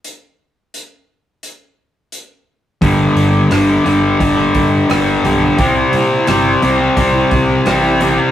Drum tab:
HH |x-x-x-x-|oooooooo|oooooooo|
SD |--------|--r---r-|--r---r-|
BD |--------|o---oo--|o---oo--|